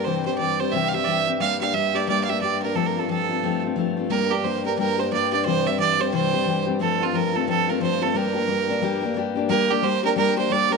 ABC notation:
X:1
M:4/4
L:1/16
Q:"Swing" 1/4=178
K:Gdor
V:1 name="Fiddle"
c2 c2 d2 c2 e3/2 f/2 e3/2 d/2 e2 z2 | f2 f2 e2 d2 d3/2 f/2 e2 d2 B2 | (3A2 B2 A2 A6 z6 | B2 G2 c2 B2 B2 c2 d2 d2 |
c2 e2 d2 c2 c6 z2 | A2 F2 B2 A2 A2 B2 c2 A2 | B12 z4 | B2 G2 c2 B2 B2 c2 d2 B2 |]
V:2 name="Steel-string acoustic guitar"
[C,E,G,CG]2 [G,CG]2 [E,G,CG]2 [G,CG]2 [C,E,G,CG]2 [G,CG]2 [E,G,CG]2 [G,CG]2 | [G,B,DG]2 [B,DG]2 [G,B,DG]2 [B,DG]2 [G,B,DG]2 [B,DG]2 [G,B,DG]2 [B,DG]2 | [F,A,CF]2 [A,CF]2 [F,A,CF]2 [A,CF]2 [F,A,CF]2 [A,CF]2 [F,A,CF]2 [A,CF]2 | [G,B,DG]2 [B,DG]2 [G,B,DG]2 [B,DG]2 [G,B,DG]2 [B,DG]2 [G,B,DG]2 [B,DG]2 |
[C,E,G,CG]2 [G,CG]2 [E,G,CG]2 [G,CG]2 [C,E,G,CG]2 [G,CG]2 [E,G,CG]2 [G,CG]2 | [F,A,CF]2 [A,CF]2 [F,A,CF]2 [A,CF]2 [F,A,CF]2 [A,CF]2 [F,A,CF]2 [A,CF]2 | [G,B,DG]2 [B,DG]2 [G,B,DG]2 [B,DG]2 [G,B,DG]2 [B,DG]2 [G,B,DG]2 [B,DG]2 | [G,B,DG]2 [B,DG]2 [G,B,DG]2 [B,DG]2 [G,B,DG]2 [B,DG]2 [G,B,DG]2 [B,DG]2 |]
V:3 name="Harmonium" clef=bass
G,,16- | G,,16- | G,,16 | G,,16- |
G,,16- | G,,16- | G,,16 | z16 |]